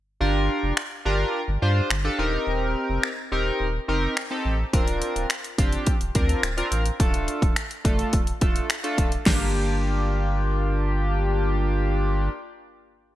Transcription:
0.20 G1 D4 F4 G4 A#4
0.63 F1
0.77 finger snap
1.05 G1 D4 F4 G4 A#4
1.48 G1
1.62 G2 D4 F4 G4 C5
1.90 G1, finger snap
2.04 D4 F4 G4 A4
2.19 D#1 C4 D#4 G4 A#4
2.47 D#1
2.89 F1
3.03 finger snap
3.32 D#1 C4 D#4 G4 A#4
3.60 D#1
3.88 F1 C4 D#4 G4 A#4
4.17 finger snap
4.31 C4 D#4 G4 A4
4.45 A1
4.73 D1 C4 D4 F4 A#4, kick, closed hi-hat
4.88 closed hi-hat
5.02 closed hi-hat
5.16 D1, closed hi-hat
5.30 finger snap, closed hi-hat
5.44 closed hi-hat
5.58 F1 C4 D4 F4 G4, kick, closed hi-hat
5.73 closed hi-hat
5.87 kick, closed hi-hat
6.01 D1, closed hi-hat
6.15 D2 C4 D4 F4 A#4, kick, closed hi-hat
6.29 closed hi-hat
6.43 D1, finger snap, closed hi-hat
6.57 C4 D4 F4 A#4, closed hi-hat
6.72 A1, closed hi-hat
6.86 closed hi-hat
7.00 D1 A3 D4 F4 A4, kick, closed hi-hat
7.14 closed hi-hat
7.28 closed hi-hat
7.42 D1, kick, closed hi-hat
7.56 finger snap, closed hi-hat
7.71 closed hi-hat
7.85 F1 A3 D4 F4 A4, kick, closed hi-hat
7.99 closed hi-hat
8.13 D1, kick, closed hi-hat
8.27 closed hi-hat
8.41 D1 A3 D4 F4 A4, kick, closed hi-hat
8.56 closed hi-hat
8.70 finger snap, closed hi-hat
8.84 A3 D4 F4 A4, closed hi-hat
8.98 D1, kick, closed hi-hat
9.12 closed hi-hat
9.26 G1 A#3 D4 F4 G4, kick, snare, crash

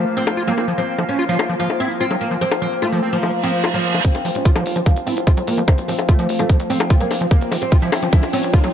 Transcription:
Already playing: F3 A#3 F4 C5 F5
0.17 C4
0.27 high bongo
0.37 F4
0.47 F#3 A#3 C4
0.58 C4, high bongo
0.68 F3
0.78 F3 C4
0.98 F3, high bongo
1.09 C#4
1.19 F4
1.29 F3 F4
1.39 high bongo
1.49 F3
1.60 F3 F4
1.70 high bongo
1.80 C4 E4
2.00 C4 F4
2.11 F#3, high bongo
2.21 A#3
2.31 F3
2.41 F3 C4
2.52 high bongo
2.62 F3 C4
2.82 A3 F4, high bongo
2.92 F3
3.03 C4
3.13 F3
3.23 F3, reverse cymbal, high bongo
3.43 F3 C4
3.64 F4, high bongo
3.74 F3 F#3
3.94 F3, high bongo
4.05 F3 C4, kick, closed hi-hat, riser
4.15 F1, closed hi-hat, high bongo
4.25 F1 F3, open hi-hat
4.35 F1 C#4, closed hi-hat
4.45 F4, kick, closed hi-hat
4.56 F1 F3 F4, closed hi-hat, high bongo
4.66 F1, open hi-hat
4.76 F1 F3, closed hi-hat
4.86 F3 F4, kick, closed hi-hat, high bongo
4.96 F1, closed hi-hat
5.07 F1 C4 E4, open hi-hat
5.17 F1, closed hi-hat
5.27 C4 F4, kick, closed hi-hat, high bongo
5.37 F2 F#3, closed hi-hat
5.47 F2 A#3, open hi-hat
5.58 F2 F3
5.68 F3 C4, kick, closed hi-hat, high bongo
5.78 F1, closed hi-hat
5.88 F1 F3 C4, open hi-hat
5.98 F1, closed hi-hat, high bongo
6.09 A3 F4, kick, closed hi-hat
6.19 F1 F3, closed hi-hat
6.29 F1, open hi-hat
6.39 F1 F3 A3, closed hi-hat, high bongo
6.49 F3, kick, closed hi-hat
6.60 F2, closed hi-hat
6.70 F2 C4, open hi-hat
6.80 F2, closed hi-hat, high bongo
6.90 F4, kick, closed hi-hat
7.00 A1 F#3 A#3, closed hi-hat
7.11 A1, open hi-hat, high bongo
7.21 A1 F3, closed hi-hat
7.31 F3 A#3, kick, closed hi-hat
7.41 F1, closed hi-hat
7.51 F1 F3, open hi-hat, high bongo
7.62 F1 C4, closed hi-hat
7.72 F4, kick, closed hi-hat
7.82 F1 F3 E4, closed hi-hat
7.92 F1, open hi-hat, high bongo
8.03 F3, closed hi-hat
8.13 F3 E4, kick, closed hi-hat
8.23 F1, closed hi-hat, high bongo
8.33 C4 C#4, open hi-hat
8.43 F1, closed hi-hat
8.54 A#3 F4, kick, closed hi-hat
8.64 F2 F#3, closed hi-hat, high bongo

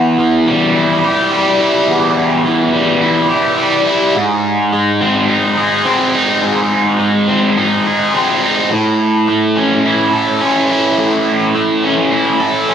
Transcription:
Already playing: E2 B3
0.18 E3
0.47 G3
0.75 E4
1.04 G4
1.31 G3
1.60 E4
1.88 E2
2.46 E3
2.73 G3
3.02 E4
3.30 G4
3.58 G3
3.87 E4
4.15 G#2
4.72 G#3
5.01 C4
5.28 D#4
5.57 G#4
5.85 C4
6.14 D#4
6.43 G#2
6.99 G#3
7.28 C4
7.57 D#4
7.86 G#4
8.14 C4
8.43 D#4
8.71 A2
9.27 A3
9.56 C#4
9.85 E4
10.13 A4
10.41 C#4
10.70 E4
10.98 A2
11.55 A3
11.83 C#4
12.11 E4
12.40 A4
12.68 C#4

